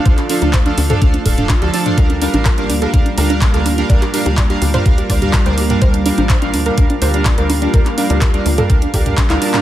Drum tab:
HH |xxoxxxoxxxoxxxox|xxoxxxoxxxoxxxox|xxoxxxoxxxoxxxox|xxoxxxoxxxoxxxox|
CP |-x--x-------x---|----x-------x---|-x--x-------x---|----x-------x---|
T2 |-------o---o---o|----------------|-------o---o---o|----------------|
CG |--oo------o---o-|--oo------o---o-|--oo------o---o-|--oo------o---o-|
BD |o---o---o-o-o---|o---o---o---o---|o---o---o-o-o---|o---o---o---o---|

HH |xxoxxxoxxxoxxxox|
CP |-x--x-------xx-x|
T2 |-------o---o---o|
CG |--oo------o---o-|
BD |o---o---o-o-o---|